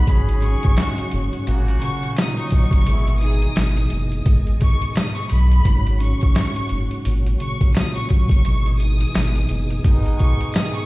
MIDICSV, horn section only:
0, 0, Header, 1, 2, 480
1, 0, Start_track
1, 0, Key_signature, 5, "minor"
1, 0, Tempo, 697674
1, 1013, Time_signature, 4, 2, 24, 8
1, 7470, End_track
2, 0, Start_track
2, 0, Title_t, "Horn section"
2, 0, Program_c, 0, 61
2, 54, Note_on_c, 0, 61, 114
2, 54, Note_on_c, 0, 68, 127
2, 506, Note_off_c, 0, 61, 0
2, 506, Note_off_c, 0, 68, 0
2, 540, Note_on_c, 0, 49, 104
2, 540, Note_on_c, 0, 56, 114
2, 540, Note_on_c, 0, 66, 121
2, 730, Note_off_c, 0, 49, 0
2, 730, Note_off_c, 0, 56, 0
2, 730, Note_off_c, 0, 66, 0
2, 1013, Note_on_c, 0, 66, 127
2, 1014, Note_on_c, 0, 49, 124
2, 1014, Note_on_c, 0, 58, 121
2, 1466, Note_off_c, 0, 49, 0
2, 1466, Note_off_c, 0, 58, 0
2, 1466, Note_off_c, 0, 66, 0
2, 1508, Note_on_c, 0, 46, 102
2, 1508, Note_on_c, 0, 54, 107
2, 1508, Note_on_c, 0, 63, 118
2, 1953, Note_off_c, 0, 46, 0
2, 1953, Note_off_c, 0, 63, 0
2, 1954, Note_off_c, 0, 54, 0
2, 1991, Note_on_c, 0, 47, 94
2, 1991, Note_on_c, 0, 56, 93
2, 1992, Note_on_c, 0, 64, 101
2, 2176, Note_off_c, 0, 47, 0
2, 2176, Note_off_c, 0, 56, 0
2, 2176, Note_off_c, 0, 64, 0
2, 2217, Note_on_c, 0, 52, 89
2, 2217, Note_on_c, 0, 68, 107
2, 2218, Note_on_c, 0, 63, 92
2, 2408, Note_off_c, 0, 52, 0
2, 2408, Note_off_c, 0, 63, 0
2, 2408, Note_off_c, 0, 68, 0
2, 6784, Note_on_c, 0, 47, 108
2, 6784, Note_on_c, 0, 63, 118
2, 6785, Note_on_c, 0, 56, 115
2, 7231, Note_off_c, 0, 47, 0
2, 7231, Note_off_c, 0, 63, 0
2, 7232, Note_off_c, 0, 56, 0
2, 7262, Note_on_c, 0, 68, 110
2, 7263, Note_on_c, 0, 51, 98
2, 7263, Note_on_c, 0, 59, 92
2, 7451, Note_off_c, 0, 51, 0
2, 7451, Note_off_c, 0, 59, 0
2, 7451, Note_off_c, 0, 68, 0
2, 7470, End_track
0, 0, End_of_file